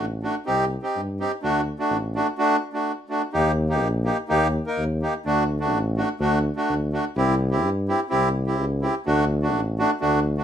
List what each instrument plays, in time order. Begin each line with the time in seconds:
0.00 tuba A1
0.23 accordion A3 D4 F#4
0.46 tuba C2, accordion C4 D#4 G4
0.82 accordion C4 D#4 G4
0.96 tuba G2
1.20 accordion C4 D#4 G4
1.43 tuba D2, accordion A3 D4 F#4
1.79 accordion A3 D4 F#4
1.90 tuba A1
2.15 accordion A3 D4 F#4
2.38 accordion A3 D4 F#4
2.73 accordion A3 D4 F#4
3.09 accordion A3 D4 F#4
3.33 tuba D#2, accordion A#3 D#4 G4
3.69 accordion A#3 D#4 G4
3.81 tuba A#1
4.04 accordion A#3 D#4 G4
4.29 tuba D#2, accordion A#3 D#4 G4
4.67 accordion A#3 D#4 A#4
4.78 tuba D#2
5.02 accordion A#3 D#4 G4
5.26 tuba D2, accordion A3 D4 F#4
5.60 accordion A3 D4 F#4
5.74 tuba A1
5.97 accordion A3 D4 F#4
6.20 tuba D2, accordion A3 D4 F#4
6.56 accordion A3 D4 F#4
6.69 tuba D2
6.92 accordion A3 D4 F#4
7.16 tuba C2, accordion C4 E4 G4
7.51 accordion C4 E4 G4
7.64 tuba G2
7.89 accordion C4 E4 G4
8.10 tuba C2, accordion C4 E4 G4
8.47 accordion C4 E4 G4
8.59 tuba C#2
8.82 accordion C4 E4 G4
9.06 tuba D2, accordion A3 D4 F#4
9.42 accordion A3 D4 F#4
9.55 tuba A1
9.79 accordion A3 D4 F#4
10.01 tuba D2, accordion A3 D4 F#4
10.38 accordion A3 D4 F#4